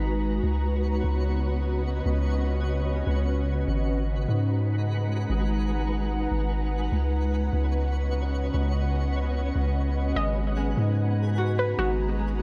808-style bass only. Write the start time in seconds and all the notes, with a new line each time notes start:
Already playing: G#1
0.43 C#2
1.04 C#2
2.06 C#2
3.07 C#2
3.68 G#1
4.29 G#2
5.30 G#1
6.31 G#1
6.92 C#2
7.53 C#2
8.54 C#2
9.56 C#2
10.16 G#1
10.77 G#2
11.79 G#1